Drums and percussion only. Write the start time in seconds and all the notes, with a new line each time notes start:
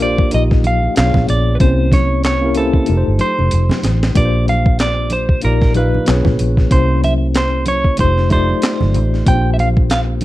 0.00 closed hi-hat, muted conga
0.18 kick
0.31 closed hi-hat, muted conga
0.51 kick, snare
0.64 closed hi-hat, muted conga, high conga
0.83 high conga
0.96 snare, clap, closed hi-hat, muted conga
1.14 kick, snare, high conga, low conga
1.27 closed hi-hat, muted conga, low conga
1.60 kick, closed hi-hat
1.92 kick, snare, closed hi-hat, muted conga, high conga
2.24 snare, clap, closed hi-hat
2.55 closed hi-hat, muted conga
2.73 kick
2.86 closed hi-hat, muted conga
3.19 closed hi-hat, high conga
3.39 high conga
3.51 closed hi-hat, muted conga
3.69 snare, high conga, low conga
3.83 snare, closed hi-hat, low conga
4.03 snare
4.15 kick, closed hi-hat, muted conga
4.48 closed hi-hat, high conga
4.66 kick
4.79 snare, clap, closed hi-hat
5.10 closed hi-hat, muted conga, high conga
5.29 kick
5.42 closed hi-hat, muted conga
5.62 kick, snare
5.74 closed hi-hat, muted conga, high conga
5.94 high conga
6.06 snare, clap, closed hi-hat, muted conga
6.25 kick, snare, high conga, low conga
6.39 closed hi-hat, muted conga, low conga
6.57 kick, snare
6.71 kick, closed hi-hat
7.04 closed hi-hat, high conga
7.35 snare, clap, closed hi-hat
7.66 closed hi-hat, muted conga, high conga
7.84 kick
7.97 kick, closed hi-hat, muted conga
8.18 snare
8.30 kick, closed hi-hat, muted conga, high conga
8.49 high conga
8.62 snare, clap, closed hi-hat
8.81 snare, high conga, low conga
8.94 closed hi-hat, muted conga, low conga
9.14 snare
9.26 kick, closed hi-hat
9.59 closed hi-hat, high conga
9.77 kick
9.89 snare, clap, closed hi-hat, muted conga
10.21 closed hi-hat